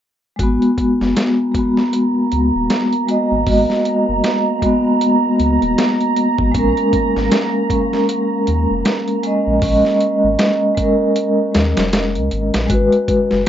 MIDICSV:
0, 0, Header, 1, 6, 480
1, 0, Start_track
1, 0, Key_signature, 5, "minor"
1, 0, Tempo, 769231
1, 243, Time_signature, 4, 2, 24, 8
1, 8416, End_track
2, 0, Start_track
2, 0, Title_t, "Ambient pad"
2, 0, Program_c, 0, 92
2, 245, Note_on_c, 0, 82, 75
2, 7936, Note_off_c, 0, 82, 0
2, 8416, End_track
3, 0, Start_track
3, 0, Title_t, "Synth texture"
3, 0, Program_c, 1, 99
3, 245, Note_on_c, 1, 58, 74
3, 245, Note_on_c, 1, 82, 72
3, 7935, Note_off_c, 1, 82, 0
3, 7936, Note_off_c, 1, 58, 0
3, 8416, End_track
4, 0, Start_track
4, 0, Title_t, "Vibraphone"
4, 0, Program_c, 2, 11
4, 226, Note_on_c, 2, 56, 74
4, 248, Note_on_c, 2, 66, 68
4, 270, Note_on_c, 2, 59, 86
4, 377, Control_c, 2, 64, 127
4, 931, Note_off_c, 2, 56, 0
4, 942, Note_off_c, 2, 66, 0
4, 948, Note_on_c, 2, 56, 61
4, 953, Note_off_c, 2, 59, 0
4, 972, Note_on_c, 2, 66, 50
4, 994, Note_on_c, 2, 59, 59
4, 1892, Note_off_c, 2, 56, 0
4, 1904, Note_off_c, 2, 66, 0
4, 1915, Note_off_c, 2, 59, 0
4, 1917, Note_on_c, 2, 56, 61
4, 1928, Note_on_c, 2, 66, 55
4, 1940, Note_on_c, 2, 75, 67
4, 2137, Note_off_c, 2, 56, 0
4, 2142, Note_off_c, 2, 66, 0
4, 2147, Note_on_c, 2, 56, 66
4, 2148, Note_off_c, 2, 75, 0
4, 2168, Note_on_c, 2, 66, 62
4, 2190, Note_on_c, 2, 75, 72
4, 2851, Note_off_c, 2, 56, 0
4, 2862, Note_off_c, 2, 66, 0
4, 2863, Note_on_c, 2, 56, 67
4, 2873, Note_off_c, 2, 75, 0
4, 2886, Note_on_c, 2, 66, 61
4, 2909, Note_on_c, 2, 59, 75
4, 4050, Note_off_c, 2, 56, 0
4, 4061, Note_off_c, 2, 66, 0
4, 4065, Note_on_c, 2, 56, 81
4, 4072, Note_off_c, 2, 59, 0
4, 4087, Note_on_c, 2, 61, 72
4, 4092, Control_c, 2, 64, 0
4, 4109, Note_on_c, 2, 70, 86
4, 4184, Control_c, 2, 64, 127
4, 4770, Note_off_c, 2, 56, 0
4, 4782, Note_off_c, 2, 61, 0
4, 4790, Note_on_c, 2, 56, 59
4, 4792, Note_off_c, 2, 70, 0
4, 4811, Note_on_c, 2, 61, 58
4, 4835, Note_on_c, 2, 70, 67
4, 5733, Note_off_c, 2, 56, 0
4, 5743, Note_off_c, 2, 61, 0
4, 5756, Note_off_c, 2, 70, 0
4, 5760, Note_on_c, 2, 56, 66
4, 5772, Note_on_c, 2, 61, 57
4, 5783, Note_on_c, 2, 75, 73
4, 5978, Note_off_c, 2, 56, 0
4, 5984, Note_off_c, 2, 61, 0
4, 5988, Note_on_c, 2, 56, 72
4, 5989, Note_off_c, 2, 75, 0
4, 6010, Note_on_c, 2, 61, 63
4, 6033, Note_on_c, 2, 75, 81
4, 6692, Note_off_c, 2, 56, 0
4, 6703, Note_off_c, 2, 61, 0
4, 6706, Note_on_c, 2, 56, 66
4, 6714, Note_off_c, 2, 75, 0
4, 6731, Note_on_c, 2, 61, 62
4, 6752, Note_on_c, 2, 70, 73
4, 7891, Note_off_c, 2, 56, 0
4, 7904, Note_off_c, 2, 61, 0
4, 7904, Note_on_c, 2, 56, 83
4, 7914, Note_off_c, 2, 70, 0
4, 7926, Note_on_c, 2, 66, 74
4, 7932, Control_c, 2, 64, 0
4, 7951, Note_on_c, 2, 71, 91
4, 8051, Control_c, 2, 64, 127
4, 8416, Note_off_c, 2, 56, 0
4, 8416, Note_off_c, 2, 66, 0
4, 8416, Note_off_c, 2, 71, 0
4, 8416, End_track
5, 0, Start_track
5, 0, Title_t, "Sub bass"
5, 0, Program_c, 3, 38
5, 248, Note_on_c, 3, 32, 89
5, 369, Note_off_c, 3, 32, 0
5, 629, Note_on_c, 3, 30, 78
5, 714, Note_off_c, 3, 30, 0
5, 1449, Note_on_c, 3, 37, 86
5, 1570, Note_off_c, 3, 37, 0
5, 1589, Note_on_c, 3, 27, 76
5, 1674, Note_off_c, 3, 27, 0
5, 2067, Note_on_c, 3, 32, 89
5, 2153, Note_off_c, 3, 32, 0
5, 2165, Note_on_c, 3, 32, 90
5, 2288, Note_off_c, 3, 32, 0
5, 2549, Note_on_c, 3, 30, 77
5, 2634, Note_off_c, 3, 30, 0
5, 3365, Note_on_c, 3, 37, 85
5, 3488, Note_off_c, 3, 37, 0
5, 3505, Note_on_c, 3, 27, 78
5, 3592, Note_off_c, 3, 27, 0
5, 3987, Note_on_c, 3, 32, 96
5, 4073, Note_off_c, 3, 32, 0
5, 4088, Note_on_c, 3, 34, 90
5, 4209, Note_off_c, 3, 34, 0
5, 4468, Note_on_c, 3, 32, 76
5, 4554, Note_off_c, 3, 32, 0
5, 5289, Note_on_c, 3, 39, 89
5, 5410, Note_off_c, 3, 39, 0
5, 5429, Note_on_c, 3, 29, 75
5, 5514, Note_off_c, 3, 29, 0
5, 5908, Note_on_c, 3, 34, 94
5, 5993, Note_off_c, 3, 34, 0
5, 6005, Note_on_c, 3, 34, 92
5, 6128, Note_off_c, 3, 34, 0
5, 6388, Note_on_c, 3, 32, 83
5, 6473, Note_off_c, 3, 32, 0
5, 7207, Note_on_c, 3, 39, 82
5, 7329, Note_off_c, 3, 39, 0
5, 7349, Note_on_c, 3, 29, 74
5, 7592, Note_on_c, 3, 37, 84
5, 7601, Note_off_c, 3, 29, 0
5, 7676, Note_off_c, 3, 37, 0
5, 7689, Note_on_c, 3, 32, 82
5, 7810, Note_off_c, 3, 32, 0
5, 7828, Note_on_c, 3, 34, 82
5, 7913, Note_off_c, 3, 34, 0
5, 7926, Note_on_c, 3, 32, 92
5, 8048, Note_off_c, 3, 32, 0
5, 8310, Note_on_c, 3, 30, 78
5, 8395, Note_off_c, 3, 30, 0
5, 8416, End_track
6, 0, Start_track
6, 0, Title_t, "Drums"
6, 244, Note_on_c, 9, 36, 96
6, 245, Note_on_c, 9, 42, 74
6, 306, Note_off_c, 9, 36, 0
6, 308, Note_off_c, 9, 42, 0
6, 387, Note_on_c, 9, 42, 38
6, 449, Note_off_c, 9, 42, 0
6, 485, Note_on_c, 9, 36, 75
6, 486, Note_on_c, 9, 42, 55
6, 547, Note_off_c, 9, 36, 0
6, 549, Note_off_c, 9, 42, 0
6, 632, Note_on_c, 9, 38, 40
6, 694, Note_off_c, 9, 38, 0
6, 726, Note_on_c, 9, 42, 78
6, 729, Note_on_c, 9, 38, 98
6, 789, Note_off_c, 9, 42, 0
6, 791, Note_off_c, 9, 38, 0
6, 964, Note_on_c, 9, 36, 83
6, 965, Note_on_c, 9, 42, 62
6, 1027, Note_off_c, 9, 36, 0
6, 1027, Note_off_c, 9, 42, 0
6, 1107, Note_on_c, 9, 38, 42
6, 1169, Note_off_c, 9, 38, 0
6, 1204, Note_on_c, 9, 42, 72
6, 1267, Note_off_c, 9, 42, 0
6, 1445, Note_on_c, 9, 42, 54
6, 1508, Note_off_c, 9, 42, 0
6, 1684, Note_on_c, 9, 42, 77
6, 1687, Note_on_c, 9, 38, 92
6, 1747, Note_off_c, 9, 42, 0
6, 1749, Note_off_c, 9, 38, 0
6, 1825, Note_on_c, 9, 42, 39
6, 1888, Note_off_c, 9, 42, 0
6, 1924, Note_on_c, 9, 42, 60
6, 1987, Note_off_c, 9, 42, 0
6, 2162, Note_on_c, 9, 46, 71
6, 2163, Note_on_c, 9, 36, 94
6, 2225, Note_off_c, 9, 46, 0
6, 2226, Note_off_c, 9, 36, 0
6, 2308, Note_on_c, 9, 38, 34
6, 2370, Note_off_c, 9, 38, 0
6, 2405, Note_on_c, 9, 42, 56
6, 2467, Note_off_c, 9, 42, 0
6, 2644, Note_on_c, 9, 42, 74
6, 2647, Note_on_c, 9, 38, 98
6, 2707, Note_off_c, 9, 42, 0
6, 2709, Note_off_c, 9, 38, 0
6, 2884, Note_on_c, 9, 36, 79
6, 2885, Note_on_c, 9, 42, 60
6, 2946, Note_off_c, 9, 36, 0
6, 2948, Note_off_c, 9, 42, 0
6, 3127, Note_on_c, 9, 42, 76
6, 3189, Note_off_c, 9, 42, 0
6, 3367, Note_on_c, 9, 42, 57
6, 3429, Note_off_c, 9, 42, 0
6, 3508, Note_on_c, 9, 42, 39
6, 3571, Note_off_c, 9, 42, 0
6, 3607, Note_on_c, 9, 42, 76
6, 3610, Note_on_c, 9, 38, 101
6, 3670, Note_off_c, 9, 42, 0
6, 3672, Note_off_c, 9, 38, 0
6, 3748, Note_on_c, 9, 42, 38
6, 3810, Note_off_c, 9, 42, 0
6, 3847, Note_on_c, 9, 42, 58
6, 3909, Note_off_c, 9, 42, 0
6, 3984, Note_on_c, 9, 36, 88
6, 4047, Note_off_c, 9, 36, 0
6, 4084, Note_on_c, 9, 36, 98
6, 4085, Note_on_c, 9, 42, 81
6, 4146, Note_off_c, 9, 36, 0
6, 4147, Note_off_c, 9, 42, 0
6, 4226, Note_on_c, 9, 42, 37
6, 4288, Note_off_c, 9, 42, 0
6, 4324, Note_on_c, 9, 36, 86
6, 4326, Note_on_c, 9, 42, 55
6, 4387, Note_off_c, 9, 36, 0
6, 4389, Note_off_c, 9, 42, 0
6, 4471, Note_on_c, 9, 38, 41
6, 4533, Note_off_c, 9, 38, 0
6, 4564, Note_on_c, 9, 42, 77
6, 4566, Note_on_c, 9, 38, 108
6, 4626, Note_off_c, 9, 42, 0
6, 4629, Note_off_c, 9, 38, 0
6, 4804, Note_on_c, 9, 36, 88
6, 4807, Note_on_c, 9, 42, 61
6, 4867, Note_off_c, 9, 36, 0
6, 4869, Note_off_c, 9, 42, 0
6, 4950, Note_on_c, 9, 38, 45
6, 5013, Note_off_c, 9, 38, 0
6, 5048, Note_on_c, 9, 42, 82
6, 5110, Note_off_c, 9, 42, 0
6, 5286, Note_on_c, 9, 42, 60
6, 5348, Note_off_c, 9, 42, 0
6, 5524, Note_on_c, 9, 42, 75
6, 5526, Note_on_c, 9, 38, 102
6, 5586, Note_off_c, 9, 42, 0
6, 5588, Note_off_c, 9, 38, 0
6, 5664, Note_on_c, 9, 42, 38
6, 5726, Note_off_c, 9, 42, 0
6, 5762, Note_on_c, 9, 42, 55
6, 5824, Note_off_c, 9, 42, 0
6, 6001, Note_on_c, 9, 46, 74
6, 6003, Note_on_c, 9, 36, 100
6, 6064, Note_off_c, 9, 46, 0
6, 6065, Note_off_c, 9, 36, 0
6, 6146, Note_on_c, 9, 38, 34
6, 6208, Note_off_c, 9, 38, 0
6, 6243, Note_on_c, 9, 42, 60
6, 6306, Note_off_c, 9, 42, 0
6, 6482, Note_on_c, 9, 42, 80
6, 6485, Note_on_c, 9, 38, 110
6, 6544, Note_off_c, 9, 42, 0
6, 6547, Note_off_c, 9, 38, 0
6, 6722, Note_on_c, 9, 42, 66
6, 6723, Note_on_c, 9, 36, 90
6, 6784, Note_off_c, 9, 42, 0
6, 6786, Note_off_c, 9, 36, 0
6, 6963, Note_on_c, 9, 42, 82
6, 7025, Note_off_c, 9, 42, 0
6, 7204, Note_on_c, 9, 42, 66
6, 7206, Note_on_c, 9, 38, 96
6, 7266, Note_off_c, 9, 42, 0
6, 7269, Note_off_c, 9, 38, 0
6, 7344, Note_on_c, 9, 42, 75
6, 7346, Note_on_c, 9, 38, 93
6, 7406, Note_off_c, 9, 42, 0
6, 7409, Note_off_c, 9, 38, 0
6, 7443, Note_on_c, 9, 42, 80
6, 7446, Note_on_c, 9, 38, 106
6, 7506, Note_off_c, 9, 42, 0
6, 7508, Note_off_c, 9, 38, 0
6, 7584, Note_on_c, 9, 42, 40
6, 7647, Note_off_c, 9, 42, 0
6, 7683, Note_on_c, 9, 42, 59
6, 7745, Note_off_c, 9, 42, 0
6, 7824, Note_on_c, 9, 42, 73
6, 7826, Note_on_c, 9, 38, 95
6, 7886, Note_off_c, 9, 42, 0
6, 7889, Note_off_c, 9, 38, 0
6, 7923, Note_on_c, 9, 36, 98
6, 7924, Note_on_c, 9, 42, 80
6, 7986, Note_off_c, 9, 36, 0
6, 7986, Note_off_c, 9, 42, 0
6, 8065, Note_on_c, 9, 42, 42
6, 8127, Note_off_c, 9, 42, 0
6, 8163, Note_on_c, 9, 36, 88
6, 8163, Note_on_c, 9, 42, 61
6, 8225, Note_off_c, 9, 36, 0
6, 8226, Note_off_c, 9, 42, 0
6, 8304, Note_on_c, 9, 38, 43
6, 8367, Note_off_c, 9, 38, 0
6, 8416, End_track
0, 0, End_of_file